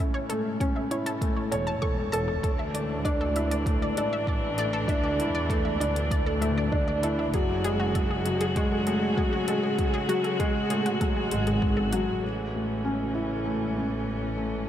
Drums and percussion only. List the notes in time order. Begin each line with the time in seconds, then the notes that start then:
0.00 closed hi-hat
0.30 closed hi-hat
0.60 kick, closed hi-hat
0.91 closed hi-hat
1.06 closed hi-hat
1.22 kick, closed hi-hat
1.52 closed hi-hat
1.83 kick
2.14 closed hi-hat
2.44 kick, closed hi-hat
2.75 closed hi-hat
3.05 kick, closed hi-hat
3.36 closed hi-hat
3.51 closed hi-hat
3.66 kick, closed hi-hat
3.97 closed hi-hat
4.27 kick
4.58 closed hi-hat
4.88 kick, closed hi-hat
5.20 closed hi-hat
5.50 kick, closed hi-hat
5.81 closed hi-hat
5.96 closed hi-hat
6.11 kick, closed hi-hat
6.42 closed hi-hat
6.72 kick
7.03 closed hi-hat
7.34 kick, closed hi-hat
7.64 closed hi-hat
7.95 kick, closed hi-hat
8.26 closed hi-hat
8.41 closed hi-hat
8.56 kick, closed hi-hat
8.87 closed hi-hat
9.17 kick
9.48 closed hi-hat
9.79 kick, closed hi-hat
10.09 closed hi-hat
10.24 closed hi-hat
10.40 kick, closed hi-hat
10.70 closed hi-hat
10.86 closed hi-hat
11.01 kick, closed hi-hat
11.31 closed hi-hat
11.47 closed hi-hat
11.62 kick
11.93 closed hi-hat
12.23 closed hi-hat
12.54 closed hi-hat
12.85 closed hi-hat
13.16 closed hi-hat
13.31 closed hi-hat
13.46 closed hi-hat
13.77 closed hi-hat
14.38 closed hi-hat